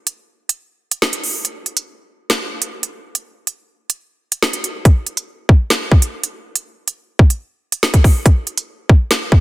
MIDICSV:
0, 0, Header, 1, 2, 480
1, 0, Start_track
1, 0, Tempo, 425532
1, 1633, Time_signature, 4, 2, 24, 8
1, 10607, End_track
2, 0, Start_track
2, 0, Title_t, "Drums"
2, 76, Note_on_c, 9, 42, 76
2, 189, Note_off_c, 9, 42, 0
2, 556, Note_on_c, 9, 42, 82
2, 669, Note_off_c, 9, 42, 0
2, 1032, Note_on_c, 9, 42, 84
2, 1145, Note_off_c, 9, 42, 0
2, 1152, Note_on_c, 9, 38, 123
2, 1264, Note_off_c, 9, 38, 0
2, 1274, Note_on_c, 9, 42, 83
2, 1386, Note_off_c, 9, 42, 0
2, 1394, Note_on_c, 9, 46, 52
2, 1506, Note_off_c, 9, 46, 0
2, 1633, Note_on_c, 9, 42, 74
2, 1746, Note_off_c, 9, 42, 0
2, 1873, Note_on_c, 9, 42, 51
2, 1986, Note_off_c, 9, 42, 0
2, 1993, Note_on_c, 9, 42, 80
2, 2106, Note_off_c, 9, 42, 0
2, 2593, Note_on_c, 9, 38, 118
2, 2594, Note_on_c, 9, 42, 89
2, 2706, Note_off_c, 9, 38, 0
2, 2707, Note_off_c, 9, 42, 0
2, 2952, Note_on_c, 9, 42, 94
2, 3064, Note_off_c, 9, 42, 0
2, 3193, Note_on_c, 9, 42, 81
2, 3306, Note_off_c, 9, 42, 0
2, 3554, Note_on_c, 9, 42, 74
2, 3667, Note_off_c, 9, 42, 0
2, 3916, Note_on_c, 9, 42, 73
2, 4028, Note_off_c, 9, 42, 0
2, 4396, Note_on_c, 9, 42, 81
2, 4509, Note_off_c, 9, 42, 0
2, 4872, Note_on_c, 9, 42, 86
2, 4985, Note_off_c, 9, 42, 0
2, 4992, Note_on_c, 9, 38, 125
2, 5105, Note_off_c, 9, 38, 0
2, 5114, Note_on_c, 9, 42, 81
2, 5227, Note_off_c, 9, 42, 0
2, 5234, Note_on_c, 9, 42, 73
2, 5347, Note_off_c, 9, 42, 0
2, 5473, Note_on_c, 9, 36, 117
2, 5474, Note_on_c, 9, 42, 75
2, 5586, Note_off_c, 9, 36, 0
2, 5587, Note_off_c, 9, 42, 0
2, 5713, Note_on_c, 9, 42, 49
2, 5826, Note_off_c, 9, 42, 0
2, 5833, Note_on_c, 9, 42, 78
2, 5946, Note_off_c, 9, 42, 0
2, 6193, Note_on_c, 9, 36, 103
2, 6306, Note_off_c, 9, 36, 0
2, 6433, Note_on_c, 9, 38, 122
2, 6434, Note_on_c, 9, 42, 86
2, 6546, Note_off_c, 9, 38, 0
2, 6547, Note_off_c, 9, 42, 0
2, 6673, Note_on_c, 9, 36, 91
2, 6785, Note_off_c, 9, 36, 0
2, 6792, Note_on_c, 9, 42, 93
2, 6905, Note_off_c, 9, 42, 0
2, 7033, Note_on_c, 9, 42, 86
2, 7146, Note_off_c, 9, 42, 0
2, 7394, Note_on_c, 9, 42, 76
2, 7507, Note_off_c, 9, 42, 0
2, 7756, Note_on_c, 9, 42, 76
2, 7869, Note_off_c, 9, 42, 0
2, 8113, Note_on_c, 9, 36, 104
2, 8226, Note_off_c, 9, 36, 0
2, 8236, Note_on_c, 9, 42, 80
2, 8349, Note_off_c, 9, 42, 0
2, 8712, Note_on_c, 9, 42, 85
2, 8824, Note_off_c, 9, 42, 0
2, 8831, Note_on_c, 9, 38, 123
2, 8944, Note_off_c, 9, 38, 0
2, 8953, Note_on_c, 9, 36, 94
2, 8953, Note_on_c, 9, 42, 82
2, 9066, Note_off_c, 9, 36, 0
2, 9066, Note_off_c, 9, 42, 0
2, 9073, Note_on_c, 9, 36, 92
2, 9074, Note_on_c, 9, 46, 51
2, 9186, Note_off_c, 9, 36, 0
2, 9186, Note_off_c, 9, 46, 0
2, 9313, Note_on_c, 9, 36, 120
2, 9314, Note_on_c, 9, 42, 74
2, 9426, Note_off_c, 9, 36, 0
2, 9426, Note_off_c, 9, 42, 0
2, 9553, Note_on_c, 9, 42, 49
2, 9665, Note_off_c, 9, 42, 0
2, 9673, Note_on_c, 9, 42, 81
2, 9786, Note_off_c, 9, 42, 0
2, 10033, Note_on_c, 9, 36, 104
2, 10146, Note_off_c, 9, 36, 0
2, 10273, Note_on_c, 9, 38, 125
2, 10274, Note_on_c, 9, 42, 87
2, 10386, Note_off_c, 9, 38, 0
2, 10387, Note_off_c, 9, 42, 0
2, 10513, Note_on_c, 9, 36, 94
2, 10607, Note_off_c, 9, 36, 0
2, 10607, End_track
0, 0, End_of_file